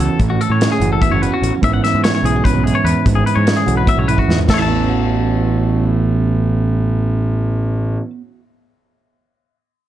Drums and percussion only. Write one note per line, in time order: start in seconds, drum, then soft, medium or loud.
0.00 closed hi-hat medium
0.20 kick medium
0.20 closed hi-hat medium
0.41 closed hi-hat medium
0.61 snare medium
0.61 closed hi-hat medium
0.81 closed hi-hat soft
1.02 kick loud
1.02 closed hi-hat medium
1.23 closed hi-hat medium
1.44 closed hi-hat medium
1.63 kick medium
1.63 closed hi-hat medium
1.84 snare soft
1.84 closed hi-hat medium
2.04 snare medium
2.04 closed hi-hat medium
2.26 closed hi-hat medium
2.45 kick medium
2.45 closed hi-hat medium
2.67 closed hi-hat soft
2.87 closed hi-hat medium
3.06 kick medium
3.06 closed hi-hat medium
3.27 closed hi-hat soft
3.47 snare medium
3.47 closed hi-hat medium
3.68 closed hi-hat medium
3.87 kick medium
3.87 closed hi-hat medium
4.09 closed hi-hat medium
4.18 kick soft
4.30 snare medium
4.39 floor tom medium
4.49 kick medium
4.49 snare medium
4.49 crash medium